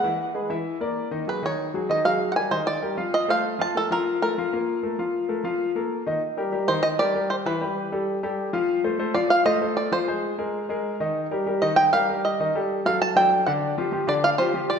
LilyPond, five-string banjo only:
\new Staff \with { instrumentName = "Five-string banjo" } { \time 4/4 \key ees \lydian \tempo 4 = 194 ges''2~ ges''8 r4. | ces''8 des''4. ees''8 f''8.~ f''32 ges''32 aes''8 | c''8 d''4. ees''8 f''4 a''8 | a'8 bes'4 bes'2~ bes'8~ |
bes'2. r4 | r4. c''8 ees''8 d''4 c''8 | b'4 r2. | r4. d''8 f''8 ees''4 d''8 |
c''4 r2. | r4. ees''8 g''8 f''4 ees''8 | r4. f''8 a''8 g''4 fis''8 | r4. d''8 f''8 c''4 d''8 | }